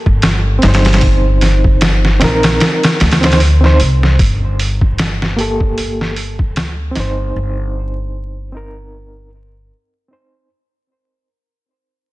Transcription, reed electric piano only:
0, 0, Header, 1, 2, 480
1, 0, Start_track
1, 0, Tempo, 789474
1, 627, Time_signature, 4, 2, 24, 8
1, 7373, End_track
2, 0, Start_track
2, 0, Title_t, "Reed electric piano"
2, 0, Program_c, 0, 4
2, 357, Note_on_c, 0, 60, 77
2, 385, Note_on_c, 0, 63, 73
2, 414, Note_on_c, 0, 72, 83
2, 1307, Note_off_c, 0, 60, 0
2, 1321, Note_off_c, 0, 63, 0
2, 1335, Note_off_c, 0, 72, 0
2, 1336, Note_on_c, 0, 60, 80
2, 1347, Note_on_c, 0, 63, 71
2, 1363, Note_on_c, 0, 70, 85
2, 1797, Note_off_c, 0, 60, 0
2, 1802, Note_off_c, 0, 63, 0
2, 1810, Note_off_c, 0, 70, 0
2, 1952, Note_on_c, 0, 60, 76
2, 1967, Note_on_c, 0, 63, 72
2, 1980, Note_on_c, 0, 72, 89
2, 2053, Note_off_c, 0, 60, 0
2, 2061, Note_off_c, 0, 63, 0
2, 2067, Note_off_c, 0, 72, 0
2, 2194, Note_on_c, 0, 60, 74
2, 2211, Note_on_c, 0, 63, 71
2, 2222, Note_on_c, 0, 72, 86
2, 2294, Note_off_c, 0, 60, 0
2, 2303, Note_off_c, 0, 63, 0
2, 2309, Note_off_c, 0, 72, 0
2, 3262, Note_on_c, 0, 58, 71
2, 3272, Note_on_c, 0, 67, 59
2, 3287, Note_on_c, 0, 69, 74
2, 3719, Note_off_c, 0, 58, 0
2, 3725, Note_off_c, 0, 67, 0
2, 3732, Note_off_c, 0, 69, 0
2, 4203, Note_on_c, 0, 60, 72
2, 4229, Note_on_c, 0, 63, 63
2, 4257, Note_on_c, 0, 72, 78
2, 5150, Note_off_c, 0, 60, 0
2, 5163, Note_off_c, 0, 63, 0
2, 5177, Note_off_c, 0, 72, 0
2, 5180, Note_on_c, 0, 60, 68
2, 5195, Note_on_c, 0, 63, 64
2, 5208, Note_on_c, 0, 70, 74
2, 5639, Note_off_c, 0, 60, 0
2, 5646, Note_off_c, 0, 63, 0
2, 5652, Note_off_c, 0, 70, 0
2, 6131, Note_on_c, 0, 60, 66
2, 6146, Note_on_c, 0, 63, 58
2, 6158, Note_on_c, 0, 72, 71
2, 6366, Note_off_c, 0, 60, 0
2, 6374, Note_off_c, 0, 63, 0
2, 6380, Note_off_c, 0, 72, 0
2, 7373, End_track
0, 0, End_of_file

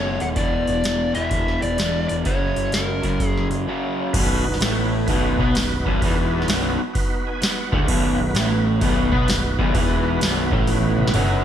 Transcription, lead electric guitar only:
0, 0, Header, 1, 2, 480
1, 0, Start_track
1, 0, Tempo, 471698
1, 368, Time_signature, 4, 2, 24, 8
1, 5647, Tempo, 465839
1, 11721, End_track
2, 0, Start_track
2, 0, Title_t, "Lead electric guitar"
2, 0, Program_c, 0, 29
2, 0, Note_on_c, 0, 73, 82
2, 218, Note_on_c, 0, 78, 85
2, 242, Note_off_c, 0, 73, 0
2, 269, Note_off_c, 0, 78, 0
2, 376, Note_on_c, 0, 74, 85
2, 1168, Note_off_c, 0, 74, 0
2, 1172, Note_on_c, 0, 76, 82
2, 1648, Note_off_c, 0, 76, 0
2, 1652, Note_on_c, 0, 74, 85
2, 2097, Note_off_c, 0, 74, 0
2, 2121, Note_on_c, 0, 74, 75
2, 2172, Note_off_c, 0, 74, 0
2, 2301, Note_on_c, 0, 73, 76
2, 2783, Note_on_c, 0, 70, 66
2, 2792, Note_off_c, 0, 73, 0
2, 3342, Note_off_c, 0, 70, 0
2, 3342, Note_on_c, 0, 68, 66
2, 3532, Note_off_c, 0, 68, 0
2, 11721, End_track
0, 0, End_of_file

